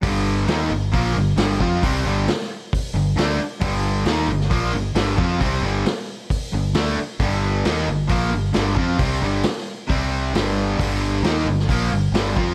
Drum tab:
HH |o---o---o---o---|o---o---o---o---|o---o---o---o---|o---o---o---o---|
SD |----o-------o---|----oo------o---|----o--o----o---|----o-------o---|
BD |o-------o-----o-|o-------o-------|o-------o-----o-|o-------o-------|

HH |o---o---o---o---|o---o---o---o---|o---o---o---o---|
SD |----o-------o---|----oo------o---|----oo-o----o---|
BD |o-------o-----o-|o-------o-------|o-------o-----o-|